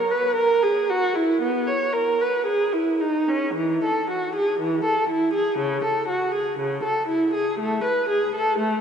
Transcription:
0.00 0.13 A#4 medium
0.11 0.39 B4 medium
0.36 0.64 A#4 medium
0.63 0.91 G#4 medium
0.90 1.18 F#4 medium
1.15 1.44 E4 medium
1.42 1.70 B3 medium
1.68 1.96 C#5 soft
1.93 2.21 A#4 medium
2.21 2.48 B4 soft
2.47 2.74 G#4 medium
2.73 3.01 E4 soft
3.01 3.29 D#4 medium
3.28 3.57 C#4 medium
3.54 3.82 E3 medium
3.85 4.10 A4 medium
4.11 4.36 F#4 soft
4.36 4.61 G#4 soft
4.60 4.85 E3 medium
4.85 5.10 A4 soft
5.10 5.34 E4 medium
5.34 5.59 G#4 medium
5.59 5.84 C#3 medium
5.85 6.10 A4 soft
6.09 6.34 F#4 medium
6.35 6.60 G#4 soft
6.59 6.84 C#3 soft
6.84 7.09 A4 medium
7.08 7.34 E4 medium
7.35 7.60 G#4 medium
7.60 7.85 A3 medium
7.84 8.09 B4 medium
8.09 8.34 G#4 medium
8.36 8.59 A4 medium
8.59 8.81 A3 medium

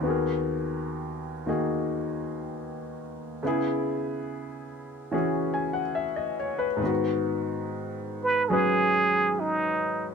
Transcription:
0.00 3.40 D#2 soft
0.00 1.45 D#3 soft
0.00 3.42 B3 soft
0.05 1.47 F#4 soft
0.05 1.47 G#4 soft
0.10 3.45 A#4 soft
1.46 3.43 D#3 soft
1.46 3.43 A#3 soft
1.46 3.43 D#4 soft
1.46 3.44 F#4 soft
1.46 3.44 G#4 soft
3.43 6.81 C#3 soft
3.43 6.81 B3 soft
3.43 6.83 E4 soft
3.47 5.13 G#4 soft
5.11 6.81 E3 soft
5.11 6.82 C#4 soft
5.11 6.81 F#4 soft
5.11 6.82 G#4 soft
5.54 5.80 G#5 soft
5.73 6.04 F#5 soft
5.95 6.36 E5 soft
6.16 6.53 D#5 soft
6.40 6.65 C#5 soft
6.58 6.89 B4 soft
6.77 10.15 G#2 soft
6.77 10.15 D#3 soft
6.83 10.15 B3 soft
6.83 10.15 F#4 soft
8.24 8.50 B4 medium
8.49 10.15 F#3 soft
8.49 10.15 C#4 soft
8.49 9.42 G#4 medium
8.49 10.15 G#4 soft
8.49 10.15 B4 soft
9.40 10.09 D#4 medium

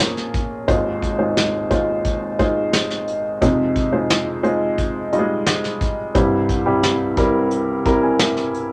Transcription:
0.00 0.64 A#1 medium
0.00 0.64 F2 medium
0.00 0.70 A#3 medium
0.00 0.70 C#4 medium
0.00 0.68 F4 medium
0.00 0.48 G#4 medium
0.00 0.68 C5 medium
0.00 0.70 C#5 medium
0.00 closed hi-hat medium
0.17 snare soft
0.34 kick medium
0.34 closed hi-hat medium
0.68 3.38 G#1 medium
0.68 3.38 D#2 medium
0.68 1.09 G#3 medium
0.68 1.09 D#4 medium
0.68 1.10 F4 medium
0.68 1.09 C5 medium
0.68 kick medium
0.68 closed hi-hat medium
1.02 kick medium
1.02 closed hi-hat medium
1.19 1.61 G#3 medium
1.19 1.61 D#4 medium
1.19 1.61 F4 medium
1.19 1.61 C5 medium
1.37 snare medium
1.37 closed hi-hat medium
1.70 2.26 G#3 medium
1.70 2.26 D#4 medium
1.70 2.26 F4 medium
1.70 2.26 C5 medium
1.70 kick medium
1.70 closed hi-hat medium
2.05 kick medium
2.05 closed hi-hat medium
2.39 3.22 G#3 medium
2.39 3.22 D#4 medium
2.39 3.22 F4 medium
2.39 3.22 C5 medium
2.39 kick medium
2.39 closed hi-hat medium
2.73 snare medium
2.73 closed hi-hat medium
2.90 snare soft
3.08 closed hi-hat medium
3.41 6.11 F2 medium
3.41 6.11 C3 medium
3.41 3.83 G#3 medium
3.41 3.83 D#4 medium
3.41 3.83 F4 medium
3.41 3.83 C5 medium
3.41 kick medium
3.41 closed hi-hat medium
3.76 kick medium
3.76 closed hi-hat medium
3.93 4.34 G#3 medium
3.93 4.34 D#4 medium
3.93 4.34 F4 medium
3.93 4.34 C5 medium
4.10 snare medium
4.10 closed hi-hat medium
4.43 4.99 G#3 medium
4.43 4.99 D#4 medium
4.43 4.99 F4 medium
4.43 4.99 C5 medium
4.43 closed hi-hat medium
4.78 kick medium
4.78 closed hi-hat medium
5.13 5.19 G3 medium
5.13 5.95 D#4 medium
5.13 5.95 F4 medium
5.13 5.95 D#5 medium
5.13 closed hi-hat medium
5.19 5.99 G#3 medium
5.47 snare medium
5.47 closed hi-hat medium
5.64 snare soft
5.81 kick medium
5.81 closed hi-hat medium
6.15 8.72 C2 medium
6.15 8.72 G2 medium
6.15 6.56 G3 medium
6.15 6.56 C4 medium
6.15 6.56 E4 medium
6.15 6.56 C5 medium
6.15 kick loud
6.15 closed hi-hat medium
6.49 kick medium
6.49 closed hi-hat medium
6.66 7.07 G3 medium
6.66 7.07 C4 medium
6.66 7.07 E4 medium
6.66 7.08 G4 medium
6.83 snare medium
6.83 closed hi-hat medium
7.17 7.72 G3 medium
7.17 7.73 C4 medium
7.17 7.73 E4 medium
7.17 7.73 A#4 medium
7.17 kick medium
7.17 closed hi-hat medium
7.51 closed hi-hat medium
7.85 8.69 G3 medium
7.85 8.69 C4 medium
7.85 8.69 E4 medium
7.85 8.69 A#4 medium
7.85 8.02 A#5 medium
7.85 kick medium
7.85 closed hi-hat medium
8.03 8.19 G#5 medium
8.19 8.72 E5 medium
8.19 snare medium
8.19 closed hi-hat medium
8.37 snare soft
8.54 closed hi-hat medium

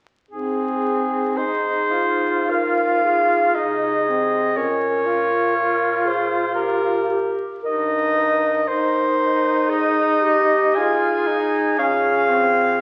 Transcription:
0.29 3.50 G#2 soft
0.29 1.39 C4 soft
0.29 1.33 G#4 soft
0.29 1.38 G#4 medium
1.35 1.93 D#4 soft
1.35 2.52 G#4 soft
1.35 2.51 C5 medium
1.92 3.57 F4 soft
2.50 3.03 A#4 soft
2.50 3.56 F5 medium
3.04 3.53 G#4 soft
3.54 4.57 C3 soft
3.54 4.07 D#4 soft
3.54 4.59 G#4 soft
3.54 4.58 D#5 medium
4.08 4.58 C4 soft
4.55 7.35 A#2 soft
4.55 5.07 C#4 soft
4.55 5.56 A#4 soft
4.55 6.09 C#5 medium
5.06 7.35 F4 soft
5.56 6.07 A#4 soft
6.05 6.54 G#4 soft
6.05 6.54 C5 medium
6.55 7.08 G4 soft
6.55 7.33 A#4 medium
7.09 7.45 G4 soft
7.63 8.70 G2 soft
7.63 8.63 D#4 soft
7.63 8.12 A#4 soft
7.63 8.69 D#5 medium
8.17 9.71 A#4 soft
8.68 11.79 G#2 soft
8.68 10.78 D#4 soft
8.68 9.71 C5 medium
9.69 10.24 G#4 soft
9.69 10.77 D#5 medium
10.22 10.79 G4 soft
10.75 11.29 F4 soft
10.75 11.78 G#4 soft
10.75 11.78 G#5 medium
11.28 11.80 D#4 medium
11.78 12.81 A#2 soft
11.78 12.31 C#4 soft
11.78 12.78 G#4 soft
11.78 12.81 F5 medium
12.29 12.80 C4 soft

